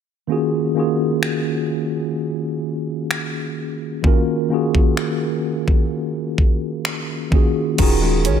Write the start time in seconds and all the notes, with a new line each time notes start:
0.27 D#3 A#3 C#4 F4 F#4
0.32 G#4
0.75 D#3 A#3 C#4 F4 F#4
0.79 G#4
1.23 finger snap
3.11 finger snap
4.02 D#3 A#3 C#4 F4 F#4, kick
4.07 A#4
4.49 D#3 A#3 C#4 F4 F#4
4.54 G#4
4.75 kick
4.97 finger snap
5.68 kick
6.38 kick
6.85 finger snap
7.31 D#3 A#3 C#4 F4 F#4, kick
7.35 G#4
7.77 D#1 D#3 C#4 F4 F#4, kick, closed hi-hat, crash
7.82 G#4
8.02 G#3
8.25 A#1 C#4, closed hi-hat